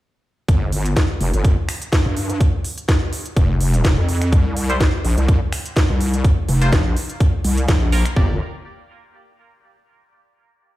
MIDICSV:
0, 0, Header, 1, 4, 480
1, 0, Start_track
1, 0, Key_signature, -2, "minor"
1, 0, Tempo, 480000
1, 486, Time_signature, 4, 2, 24, 8
1, 10768, End_track
2, 0, Start_track
2, 0, Title_t, "Synth stab"
2, 0, Program_c, 0, 62
2, 4696, Note_on_c, 0, 55, 104
2, 4696, Note_on_c, 0, 64, 93
2, 4696, Note_on_c, 0, 72, 118
2, 4772, Note_off_c, 0, 55, 0
2, 4772, Note_off_c, 0, 72, 0
2, 4773, Note_off_c, 0, 64, 0
2, 6614, Note_on_c, 0, 72, 112
2, 6615, Note_on_c, 0, 58, 105
2, 6615, Note_on_c, 0, 65, 94
2, 6692, Note_off_c, 0, 58, 0
2, 6692, Note_off_c, 0, 65, 0
2, 6692, Note_off_c, 0, 72, 0
2, 7923, Note_on_c, 0, 58, 82
2, 7923, Note_on_c, 0, 65, 75
2, 7924, Note_on_c, 0, 70, 95
2, 8015, Note_off_c, 0, 58, 0
2, 8015, Note_off_c, 0, 65, 0
2, 8015, Note_off_c, 0, 70, 0
2, 8164, Note_on_c, 0, 58, 89
2, 8164, Note_on_c, 0, 67, 79
2, 8164, Note_on_c, 0, 74, 96
2, 8347, Note_off_c, 0, 58, 0
2, 8347, Note_off_c, 0, 67, 0
2, 8347, Note_off_c, 0, 74, 0
2, 10768, End_track
3, 0, Start_track
3, 0, Title_t, "Wobble bass"
3, 0, Program_c, 1, 39
3, 484, Note_on_c, 1, 31, 98
3, 947, Note_off_c, 1, 31, 0
3, 1205, Note_on_c, 1, 29, 99
3, 1314, Note_off_c, 1, 29, 0
3, 1336, Note_on_c, 1, 31, 98
3, 1555, Note_off_c, 1, 31, 0
3, 2056, Note_on_c, 1, 43, 99
3, 2388, Note_off_c, 1, 43, 0
3, 3365, Note_on_c, 1, 29, 95
3, 3828, Note_off_c, 1, 29, 0
3, 3845, Note_on_c, 1, 29, 102
3, 3955, Note_off_c, 1, 29, 0
3, 3975, Note_on_c, 1, 41, 100
3, 4308, Note_off_c, 1, 41, 0
3, 4324, Note_on_c, 1, 36, 98
3, 4788, Note_off_c, 1, 36, 0
3, 5045, Note_on_c, 1, 34, 99
3, 5155, Note_off_c, 1, 34, 0
3, 5175, Note_on_c, 1, 36, 99
3, 5395, Note_off_c, 1, 36, 0
3, 5895, Note_on_c, 1, 36, 101
3, 6228, Note_off_c, 1, 36, 0
3, 6484, Note_on_c, 1, 29, 98
3, 6707, Note_off_c, 1, 29, 0
3, 6724, Note_on_c, 1, 34, 100
3, 6947, Note_off_c, 1, 34, 0
3, 7445, Note_on_c, 1, 36, 96
3, 7668, Note_off_c, 1, 36, 0
3, 7684, Note_on_c, 1, 34, 100
3, 8034, Note_off_c, 1, 34, 0
3, 8165, Note_on_c, 1, 31, 100
3, 8388, Note_off_c, 1, 31, 0
3, 10768, End_track
4, 0, Start_track
4, 0, Title_t, "Drums"
4, 485, Note_on_c, 9, 36, 117
4, 485, Note_on_c, 9, 42, 56
4, 585, Note_off_c, 9, 36, 0
4, 585, Note_off_c, 9, 42, 0
4, 725, Note_on_c, 9, 46, 105
4, 825, Note_off_c, 9, 46, 0
4, 855, Note_on_c, 9, 42, 70
4, 955, Note_off_c, 9, 42, 0
4, 965, Note_on_c, 9, 36, 119
4, 965, Note_on_c, 9, 42, 56
4, 967, Note_on_c, 9, 38, 121
4, 1065, Note_off_c, 9, 36, 0
4, 1065, Note_off_c, 9, 42, 0
4, 1067, Note_off_c, 9, 38, 0
4, 1206, Note_on_c, 9, 46, 92
4, 1306, Note_off_c, 9, 46, 0
4, 1336, Note_on_c, 9, 42, 67
4, 1436, Note_off_c, 9, 42, 0
4, 1445, Note_on_c, 9, 36, 121
4, 1445, Note_on_c, 9, 42, 54
4, 1545, Note_off_c, 9, 36, 0
4, 1545, Note_off_c, 9, 42, 0
4, 1686, Note_on_c, 9, 26, 86
4, 1686, Note_on_c, 9, 46, 105
4, 1786, Note_off_c, 9, 26, 0
4, 1786, Note_off_c, 9, 46, 0
4, 1816, Note_on_c, 9, 42, 68
4, 1916, Note_off_c, 9, 42, 0
4, 1925, Note_on_c, 9, 36, 122
4, 1926, Note_on_c, 9, 42, 56
4, 1928, Note_on_c, 9, 38, 126
4, 2025, Note_off_c, 9, 36, 0
4, 2026, Note_off_c, 9, 42, 0
4, 2028, Note_off_c, 9, 38, 0
4, 2166, Note_on_c, 9, 46, 91
4, 2266, Note_off_c, 9, 46, 0
4, 2296, Note_on_c, 9, 42, 67
4, 2396, Note_off_c, 9, 42, 0
4, 2405, Note_on_c, 9, 36, 119
4, 2406, Note_on_c, 9, 42, 53
4, 2505, Note_off_c, 9, 36, 0
4, 2506, Note_off_c, 9, 42, 0
4, 2645, Note_on_c, 9, 46, 113
4, 2745, Note_off_c, 9, 46, 0
4, 2776, Note_on_c, 9, 42, 68
4, 2876, Note_off_c, 9, 42, 0
4, 2885, Note_on_c, 9, 36, 126
4, 2886, Note_on_c, 9, 26, 59
4, 2886, Note_on_c, 9, 42, 52
4, 2888, Note_on_c, 9, 38, 119
4, 2985, Note_off_c, 9, 36, 0
4, 2986, Note_off_c, 9, 26, 0
4, 2986, Note_off_c, 9, 42, 0
4, 2988, Note_off_c, 9, 38, 0
4, 3126, Note_on_c, 9, 46, 97
4, 3226, Note_off_c, 9, 46, 0
4, 3256, Note_on_c, 9, 42, 65
4, 3356, Note_off_c, 9, 42, 0
4, 3365, Note_on_c, 9, 36, 127
4, 3366, Note_on_c, 9, 42, 57
4, 3465, Note_off_c, 9, 36, 0
4, 3466, Note_off_c, 9, 42, 0
4, 3606, Note_on_c, 9, 46, 110
4, 3706, Note_off_c, 9, 46, 0
4, 3737, Note_on_c, 9, 42, 70
4, 3837, Note_off_c, 9, 42, 0
4, 3845, Note_on_c, 9, 36, 126
4, 3846, Note_on_c, 9, 26, 66
4, 3846, Note_on_c, 9, 42, 57
4, 3848, Note_on_c, 9, 38, 127
4, 3945, Note_off_c, 9, 36, 0
4, 3946, Note_off_c, 9, 26, 0
4, 3946, Note_off_c, 9, 42, 0
4, 3948, Note_off_c, 9, 38, 0
4, 4085, Note_on_c, 9, 46, 92
4, 4185, Note_off_c, 9, 46, 0
4, 4216, Note_on_c, 9, 26, 60
4, 4216, Note_on_c, 9, 42, 67
4, 4316, Note_off_c, 9, 26, 0
4, 4316, Note_off_c, 9, 42, 0
4, 4325, Note_on_c, 9, 36, 125
4, 4326, Note_on_c, 9, 42, 54
4, 4425, Note_off_c, 9, 36, 0
4, 4426, Note_off_c, 9, 42, 0
4, 4566, Note_on_c, 9, 46, 115
4, 4666, Note_off_c, 9, 46, 0
4, 4695, Note_on_c, 9, 42, 64
4, 4795, Note_off_c, 9, 42, 0
4, 4805, Note_on_c, 9, 36, 122
4, 4806, Note_on_c, 9, 42, 51
4, 4808, Note_on_c, 9, 38, 124
4, 4905, Note_off_c, 9, 36, 0
4, 4906, Note_off_c, 9, 42, 0
4, 4908, Note_off_c, 9, 38, 0
4, 5046, Note_on_c, 9, 46, 97
4, 5146, Note_off_c, 9, 46, 0
4, 5176, Note_on_c, 9, 42, 63
4, 5276, Note_off_c, 9, 42, 0
4, 5285, Note_on_c, 9, 36, 127
4, 5285, Note_on_c, 9, 42, 51
4, 5385, Note_off_c, 9, 36, 0
4, 5385, Note_off_c, 9, 42, 0
4, 5525, Note_on_c, 9, 26, 85
4, 5525, Note_on_c, 9, 46, 112
4, 5625, Note_off_c, 9, 26, 0
4, 5625, Note_off_c, 9, 46, 0
4, 5656, Note_on_c, 9, 42, 64
4, 5756, Note_off_c, 9, 42, 0
4, 5765, Note_on_c, 9, 36, 124
4, 5766, Note_on_c, 9, 42, 54
4, 5768, Note_on_c, 9, 38, 127
4, 5865, Note_off_c, 9, 36, 0
4, 5866, Note_off_c, 9, 42, 0
4, 5868, Note_off_c, 9, 38, 0
4, 6006, Note_on_c, 9, 46, 94
4, 6105, Note_off_c, 9, 46, 0
4, 6136, Note_on_c, 9, 42, 65
4, 6236, Note_off_c, 9, 42, 0
4, 6244, Note_on_c, 9, 36, 123
4, 6245, Note_on_c, 9, 42, 50
4, 6344, Note_off_c, 9, 36, 0
4, 6345, Note_off_c, 9, 42, 0
4, 6485, Note_on_c, 9, 46, 106
4, 6585, Note_off_c, 9, 46, 0
4, 6616, Note_on_c, 9, 42, 62
4, 6716, Note_off_c, 9, 42, 0
4, 6724, Note_on_c, 9, 36, 127
4, 6726, Note_on_c, 9, 26, 60
4, 6726, Note_on_c, 9, 42, 51
4, 6728, Note_on_c, 9, 38, 115
4, 6824, Note_off_c, 9, 36, 0
4, 6826, Note_off_c, 9, 26, 0
4, 6826, Note_off_c, 9, 42, 0
4, 6828, Note_off_c, 9, 38, 0
4, 6965, Note_on_c, 9, 46, 99
4, 7065, Note_off_c, 9, 46, 0
4, 7095, Note_on_c, 9, 42, 62
4, 7195, Note_off_c, 9, 42, 0
4, 7204, Note_on_c, 9, 36, 125
4, 7205, Note_on_c, 9, 42, 49
4, 7304, Note_off_c, 9, 36, 0
4, 7305, Note_off_c, 9, 42, 0
4, 7445, Note_on_c, 9, 46, 116
4, 7545, Note_off_c, 9, 46, 0
4, 7575, Note_on_c, 9, 42, 64
4, 7675, Note_off_c, 9, 42, 0
4, 7684, Note_on_c, 9, 36, 125
4, 7685, Note_on_c, 9, 26, 67
4, 7685, Note_on_c, 9, 42, 52
4, 7687, Note_on_c, 9, 38, 120
4, 7784, Note_off_c, 9, 36, 0
4, 7785, Note_off_c, 9, 26, 0
4, 7785, Note_off_c, 9, 42, 0
4, 7787, Note_off_c, 9, 38, 0
4, 7924, Note_on_c, 9, 46, 96
4, 8024, Note_off_c, 9, 46, 0
4, 8055, Note_on_c, 9, 26, 61
4, 8055, Note_on_c, 9, 42, 64
4, 8155, Note_off_c, 9, 26, 0
4, 8155, Note_off_c, 9, 42, 0
4, 8165, Note_on_c, 9, 36, 105
4, 8265, Note_off_c, 9, 36, 0
4, 10768, End_track
0, 0, End_of_file